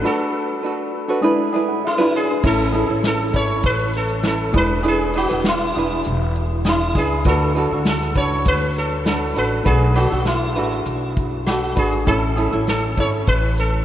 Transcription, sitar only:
0.06 A4
1.87 E4
2.16 G#4
2.47 A4
3.07 A4
3.36 C#5
3.66 B4
3.97 A4
4.27 A4
4.57 B4
4.88 G#4
5.17 F#4
5.48 E4
6.69 E4
6.98 G#4
7.28 A4
7.89 A4
8.17 C#5
8.48 B4
8.78 A4
9.08 A4
9.38 B4
9.67 G#4
9.96 F#4
10.27 E4
11.46 F#4
11.78 G#4
12.08 A4
12.69 A4
13.00 C#5
13.28 B4
13.60 A4

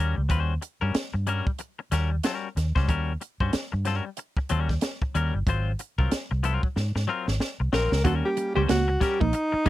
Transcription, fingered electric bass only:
Already playing: D#2
0.18 C#2
0.30 D#2
0.82 G2
0.95 muted fingered electric bass stroke
1.14 G2
1.92 D#2
2.57 D#2
2.76 C#2
2.89 D#2
3.41 G2
3.54 muted fingered electric bass stroke
3.73 G2
4.51 D#2
5.15 D#2
5.34 G1
5.47 G#1
5.99 C2
6.31 C2
6.76 G#2
6.95 G#2
7.28 G#1
7.60 C2
7.73 A#1
7.92 C#2
8.05 D#2
8.56 C#2
8.70 C#2
9.22 A#1
9.53 muted fingered electric bass stroke

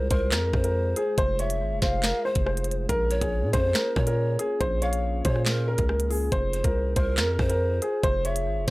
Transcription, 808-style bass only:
0.11 C2
0.32 F2
0.54 F2
1.18 F1
1.61 G#1
1.71 F1
1.82 F1
2.36 F1
2.89 A#1
3.21 A#1
3.43 A#2
3.54 F2
3.96 A#2
4.61 A#1
5.25 A#2
5.79 C#2
6.32 F1
6.64 C2
6.96 C2
7.18 F2
7.39 F2
8.03 F1
8.46 G#1
8.57 F1

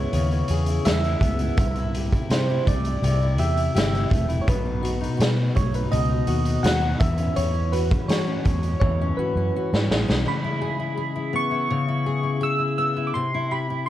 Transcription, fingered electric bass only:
0.13 D#2
0.49 E2
0.86 E2
1.21 C#2
1.58 C2
2.30 C3
2.67 C2
3.02 C2
3.39 E2
3.76 G1
4.11 E1
4.48 B1
5.19 B2
5.57 B1
5.92 C#2
6.27 D#2
6.64 D#2
7.01 E2
7.37 E2
8.08 E3
8.46 E2
8.81 E2
9.18 muted fingered electric bass stroke
9.36 F#2
9.73 G#2
9.90 A1
10.09 B1

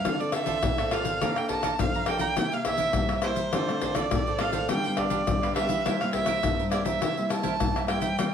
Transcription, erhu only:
Already playing: F5
0.20 D5
0.33 E5
0.93 F5
1.37 G5
1.50 A5
1.80 F5
2.07 G5
2.53 F5
2.66 E5
3.23 C5
3.95 D5
4.40 F5
4.70 G5
4.98 D5
5.55 E5
6.00 F5
6.13 E5
6.72 D5
6.87 E5
7.32 A5
7.89 G5

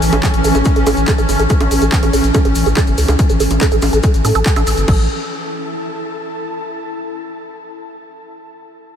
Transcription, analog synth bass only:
0.02 A1
0.13 A1
0.34 A1
0.44 A1
0.55 A1
0.76 A1
0.87 A1
0.97 A1
1.18 A1
1.29 G1
1.39 A1
1.61 A1
1.71 A1
1.82 A1
2.03 A1
2.13 A1
2.24 A1
2.45 A1
2.56 A1
2.66 A1
2.87 G1
2.98 C#2
3.08 C#2
3.30 A1
3.40 A1
3.51 A1
3.72 A1
3.82 A1
3.93 A1
4.14 A1
4.25 A2
4.35 A1
4.56 A1
4.67 A1
4.77 G1
4.88 A1

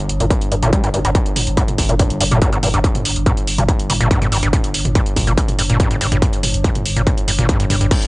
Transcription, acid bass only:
0.20 A#2
0.31 G2
0.52 G2
0.63 A#2
0.73 G3
0.84 G2
0.94 G2
1.05 G2
1.15 G2
1.57 G2
1.89 A#2
2.00 G2
2.21 G2
2.32 A#2
2.42 G2
2.53 G2
2.63 G2
2.74 G2
2.84 G2
3.26 G2
3.58 A#2
3.69 G2
3.90 G2
4.01 A#2
4.11 G2
4.22 G2
4.32 G2
4.43 G2
4.53 G2
4.95 G2
5.27 A#2
5.38 G2
5.59 G2
5.70 A#2
5.80 G2
5.91 G2
6.01 G2
6.12 G2
6.22 G2
6.64 G2
6.96 A#2
7.07 G2
7.28 G2
7.39 A#2
7.49 G2
7.60 G2
7.70 G2
7.81 G2
7.91 G2

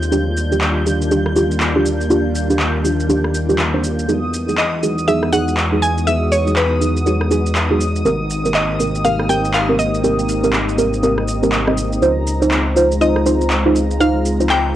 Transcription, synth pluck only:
4.58 D#5
5.08 E5
5.33 F#5
5.82 G#5
6.07 E5
6.32 C#5
6.57 B4
8.55 D#5
9.05 F5
9.29 G5
9.54 F5
9.79 D#5
13.01 D#5
14.01 F5
14.50 G5

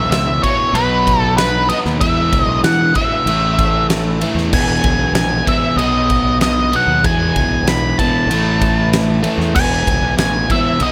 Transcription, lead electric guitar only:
0.11 E5
0.43 C#5
0.74 B4
1.19 A4
1.38 B4
1.69 D#5
2.01 E5
2.43 D#5
2.64 F#5
2.96 E5
4.54 G#5
5.15 G#5
5.48 E5
5.78 D#5
6.42 D#5
6.76 F#5
7.06 G#5
7.69 B5
7.99 A5
9.56 G#5
10.20 G#5
10.52 E5
10.83 D#5

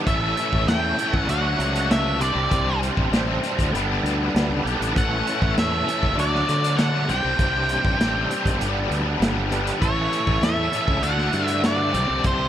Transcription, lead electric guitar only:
0.07 E5
0.69 G5
1.14 F#5
1.30 F#5
1.92 E5
2.22 D5
4.98 F#5
5.59 E5
6.20 D5
6.77 F#5
7.10 G5
9.82 C#5
10.44 E5
11.04 F#5
11.47 E5
11.66 D5
12.26 C5

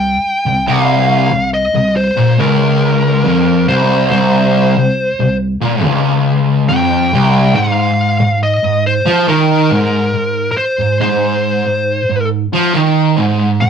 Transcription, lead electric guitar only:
Already playing: G5
0.68 F5
1.54 D#5
1.96 C5
2.40 A#4
3.68 C5
4.11 C5
6.69 G5
7.56 F5
8.43 D#5
8.87 C5
9.29 A#4
10.51 A#4
10.57 C5
11.01 C5
13.61 G5

